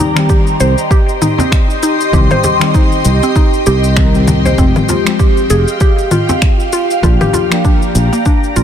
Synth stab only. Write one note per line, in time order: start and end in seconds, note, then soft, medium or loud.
0.00 0.12 D#3 medium
0.00 0.12 G3 medium
0.00 0.13 C4 medium
0.00 0.13 G4 medium
0.15 2.09 D#3 medium
0.15 2.10 G3 medium
0.15 2.10 C4 medium
0.15 2.11 G4 medium
2.13 2.57 D#3 medium
2.13 2.57 G3 medium
2.13 2.58 C4 medium
2.13 2.58 G4 medium
2.59 3.93 D#3 medium
2.59 3.94 G3 medium
2.59 3.95 C4 medium
2.59 3.95 G4 medium
3.96 4.10 D#3 medium
3.96 4.10 G3 medium
3.96 4.11 C4 medium
3.96 4.11 A#4 medium
4.14 4.55 D#3 medium
4.14 4.55 G3 medium
4.14 4.55 C4 medium
4.14 4.56 G4 medium
4.58 5.02 F3 medium
4.58 5.03 G#3 medium
4.58 5.03 C4 medium
4.58 5.03 G4 medium
5.04 6.99 F3 medium
5.04 7.00 G#3 medium
5.04 7.00 C4 medium
5.09 7.01 G4 medium
7.03 7.47 F3 medium
7.03 7.47 A#3 medium
7.03 7.48 D4 medium
7.03 7.48 G4 medium
7.50 8.63 F3 medium
7.50 8.63 A#3 medium
7.50 8.63 D4 medium
7.54 8.63 G4 medium